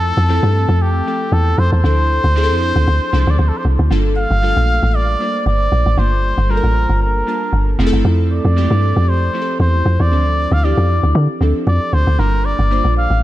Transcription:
Already playing: log drum bass F2, synth keys F3 A3 C4 E4 A4, muted trumpet A4
0.17 log drum bass F2
0.29 synth keys F3 A3 C4 E4 A4
0.43 log drum bass G2
0.69 log drum bass F2
0.82 muted trumpet G4
1.06 synth keys F3 A3 C4 E4 A4
1.32 log drum bass E2, muted trumpet A4
1.58 log drum bass F2, muted trumpet C5
1.72 log drum bass E2, muted trumpet C5
1.84 log drum bass D2, synth keys F3 C4 D4 E4 A4
2.24 log drum bass D2
2.35 synth keys F3 C4 D4 E4 G#4
2.44 synth keys A4
2.50 log drum bass F2
2.76 log drum bass D2
2.87 log drum bass D2
3.13 log drum bass C2, synth keys F3 C4 D4 E4 A4
3.27 log drum bass D2, muted trumpet D5
3.39 log drum bass D2, muted trumpet C5
3.48 muted trumpet A4
3.57 muted trumpet C5
3.65 log drum bass C2
3.79 log drum bass D2
3.90 log drum bass G1, synth keys G3 A#3 D4 F4 A4
4.18 muted trumpet F5
4.31 log drum bass G1
4.42 synth keys G3 A3 D4 F4 A4
4.49 synth keys A#3
4.57 log drum bass A#1
4.83 log drum bass A1
4.95 muted trumpet D5
5.20 synth keys G3 A#3 D4 F4 C5
5.46 log drum bass G1, muted trumpet D5
5.72 log drum bass A#1
5.86 log drum bass A1
5.97 log drum bass G1, synth keys G3 A#3 D4 F4 C5, muted trumpet C5
6.38 log drum bass G1
6.49 synth keys G3 A#3 D4 F4 A4, muted trumpet A#4
6.57 synth keys A#4
6.64 log drum bass A1
6.89 log drum bass G1
7.02 muted trumpet A#4
7.27 synth keys G3 A#3 D4 F4 A5
7.53 log drum bass G1
7.79 log drum bass F1, synth keys F3 A3 C4 E4 G#4
7.87 synth keys A4
7.93 log drum bass G1
8.05 log drum bass F2
8.32 muted trumpet D5
8.45 log drum bass F2
8.56 synth keys F3 G#3 C4 E4 G4
8.63 synth keys A3
8.71 log drum bass G2
8.96 log drum bass F2
9.09 muted trumpet C5
9.34 synth keys F3 A3 C4 E4 G4
9.42 synth keys A4
9.60 log drum bass E2, muted trumpet C5
9.86 log drum bass F2
10.00 log drum bass E2, muted trumpet D5
10.11 log drum bass D2, synth keys E3 C4 D4 E4 A4
10.17 synth keys F3
10.52 log drum bass D2, muted trumpet F5
10.63 synth keys E3 C4 D4 E4 G4, muted trumpet D5
10.69 synth keys F3
10.78 log drum bass F2
11.03 log drum bass D2
11.15 log drum bass D3
11.41 log drum bass D2, synth keys F3 C4 D4 E4 A4
11.67 log drum bass F2, muted trumpet D5
11.93 log drum bass D2, muted trumpet C5
12.07 log drum bass D2
12.19 log drum bass G1, synth keys G3 A#3 D4 F4 A4, muted trumpet A#4
12.45 muted trumpet D5
12.59 log drum bass G1
12.70 synth keys G3 A#3 D4 F4 C5
12.85 log drum bass A#1
12.97 muted trumpet F5
13.10 log drum bass A1

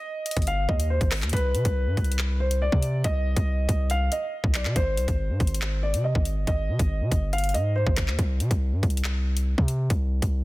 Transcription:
Already playing: grand piano D#5
0.26 closed hi-hat
0.31 closed hi-hat
0.37 808-style bass G1, kick, closed hi-hat
0.42 closed hi-hat
0.47 grand piano F5, closed hi-hat
0.69 808-style bass D#2, grand piano D#5, kick
0.80 closed hi-hat
0.90 grand piano C5
1.01 808-style bass G#1, kick, closed hi-hat
1.11 cross-stick, clap, open hi-hat
1.22 808-style bass D#2, clap, closed hi-hat
1.29 closed hi-hat
1.33 808-style bass C2, grand piano B4, kick, closed hi-hat
1.37 closed hi-hat
1.54 808-style bass C3, closed hi-hat
1.65 808-style bass C2, kick, closed hi-hat
1.87 808-style bass G2
1.97 808-style bass C2, kick, closed hi-hat
2.04 closed hi-hat
2.12 closed hi-hat
2.19 clap
2.40 grand piano C5
2.51 closed hi-hat
2.62 grand piano D5
2.72 808-style bass C3, kick
2.82 closed hi-hat
3.04 808-style bass C2, grand piano D#5, kick, closed hi-hat
3.37 808-style bass C2, kick, closed hi-hat
3.69 808-style bass C2, kick, closed hi-hat
3.90 grand piano F5, closed hi-hat
4.12 grand piano D#5, closed hi-hat
4.44 808-style bass B1, kick
4.54 grand piano D5, clap, closed hi-hat
4.65 808-style bass C3, clap
4.76 808-style bass G#1, grand piano C5, kick, closed hi-hat
4.97 808-style bass C2, closed hi-hat
5.08 808-style bass G#1, kick, closed hi-hat
5.29 808-style bass G#2
5.40 808-style bass G#1, kick, closed hi-hat
5.47 closed hi-hat
5.54 closed hi-hat
5.62 clap
5.83 grand piano D5
5.94 808-style bass C3, closed hi-hat
6.04 grand piano D#5
6.15 808-style bass G#1, kick
6.25 closed hi-hat
6.37 808-style bass G1
6.47 808-style bass G#1, grand piano D#5, kick, closed hi-hat
6.69 808-style bass C3
6.79 808-style bass G#1, kick, closed hi-hat
7.01 808-style bass C3
7.12 808-style bass G1, kick, closed hi-hat
7.33 grand piano F5, closed hi-hat
7.38 closed hi-hat
7.44 closed hi-hat
7.49 closed hi-hat
7.54 808-style bass G#2, grand piano D#5, closed hi-hat
7.76 grand piano C5
7.87 808-style bass G#1, kick
7.97 kick, cross-stick, clap, closed hi-hat
8.08 808-style bass D#2, clap
8.19 808-style bass C2, kick, closed hi-hat
8.40 808-style bass C3, closed hi-hat
8.51 808-style bass C2, kick, closed hi-hat
8.72 808-style bass G2
8.83 808-style bass C2, kick, closed hi-hat
8.90 closed hi-hat
8.97 closed hi-hat
9.04 clap
9.37 closed hi-hat
9.58 808-style bass C3, kick
9.68 closed hi-hat
9.90 808-style bass C2, kick, closed hi-hat
10.22 808-style bass C2, kick, closed hi-hat

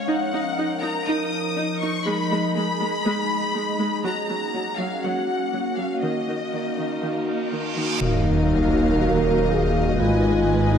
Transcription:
0.07 ambient pad F3 D#4 A#4 D#5, viola section D#4, violin section F#5
0.33 viola section D#4
0.58 viola section D#4
0.82 viola section D#4, violin section A#5
1.06 viola section D#4, violin section D#6
1.57 viola section D#4
1.80 viola section D#4, violin section C#6
2.05 viola section G#3, ambient pad G#3 G#4, violin section B5
2.31 viola section G#3
2.55 viola section G#3, violin section B5
2.80 viola section G#3
3.05 viola section G#3
3.55 viola section G#3
3.79 viola section G#3
4.04 viola section F#3, ambient pad A#3 C#4 F#4 F#5, violin section A#5
4.29 viola section F#3
4.54 viola section F#3
4.78 viola section F#3, violin section F5
5.02 viola section F#3, violin section F#5
5.53 viola section F#3
5.77 viola section F#3, violin section F5
6.02 viola section D#3, ambient pad D#4 F5, violin section D#5, reverse cymbal
6.28 viola section D#3
6.53 viola section D#3
6.78 viola section D#3
7.03 viola section D#3
7.52 viola section D#3
7.77 viola section D#3
8.00 detuned saw bass D#1, cello section D#2, double bass section D#2, viola section F#3 A#4, ambient pad A#3 D#4 F#4 F5, french horn section D#4, violin section D#5 F5, sub drop
9.01 french horn section A#4
9.51 french horn section G#4
9.87 french horn section F#4
9.97 double bass section G#1, detuned saw bass G#1, cello section G#2, viola section G#3 B4, ambient pad B3 G#4 D#5, french horn section F4, violin section G#5
10.73 french horn section D#4

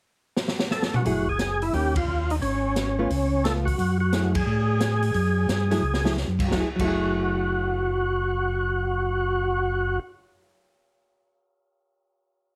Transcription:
0.36 snare
0.48 snare
0.59 snare
0.71 tonewheel organ A4, snare
0.82 snare
0.94 tonewheel organ F#4, mid tom
1.05 tonewheel organ F#1 F#4, hollow-body jazz guitar F#3 A3 E4 G#4, kick, open hi-hat
1.27 tonewheel organ G#4, kick
1.39 tonewheel organ G#4, snare, closed hi-hat
1.62 tonewheel organ E4, open hi-hat
1.73 tonewheel organ D#2 G4, hollow-body jazz guitar D#3 A#3 C#4 G4, kick, open hi-hat
1.95 tonewheel organ F4, kick, ride
2.08 tonewheel organ D#2
2.30 tonewheel organ D#4, open hi-hat
2.42 tonewheel organ G#1 C#4, kick, open hi-hat
2.76 snare, closed hi-hat
2.99 hollow-body jazz guitar A3 B3 F4
3.10 tonewheel organ C#2, kick, open hi-hat
3.44 hollow-body jazz guitar A3 B3 F4, tonewheel organ A4, snare, closed hi-hat
3.65 tonewheel organ F#4, kick, open hi-hat
3.78 tonewheel organ F#2, kick, open hi-hat
4.00 tonewheel organ F#4
4.13 hollow-body jazz guitar F#3 A3 E4 G#4, snare, closed hi-hat
4.35 tonewheel organ G#4, kick, ride
4.46 tonewheel organ A2
4.80 snare, closed hi-hat
5.02 open hi-hat
5.14 tonewheel organ F#2, kick, open hi-hat
5.48 tonewheel organ G2, snare, closed hi-hat
5.71 hollow-body jazz guitar F#3 A3 E4 G#4, snare, open hi-hat
5.82 tonewheel organ C#2
5.94 snare
6.05 hollow-body jazz guitar F#3 A3 E4 G#4, snare
6.17 snare
6.28 tonewheel organ F#2
6.39 tonewheel organ G2, kick, crash
6.48 tonewheel organ F#1, hollow-body jazz guitar F#3, kick, snare
6.52 hollow-body jazz guitar A3, tonewheel organ F#4
6.57 hollow-body jazz guitar E4 G#4
6.76 tonewheel organ F#1, hollow-body jazz guitar F#3, kick, crash
6.81 hollow-body jazz guitar A3 E4, tonewheel organ F#4
6.87 hollow-body jazz guitar G#4

